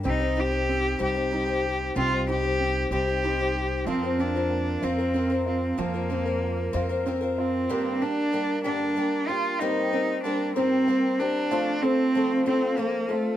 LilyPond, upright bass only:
\new Staff \with { instrumentName = "Upright bass" } { \clef bass \time 6/8 \key f \mixolydian \tempo 4. = 63 c,4. c,4. | c,4. c,4. | f,4. f,4. | f,4. f,4. |
r2. | r2. | r2. | }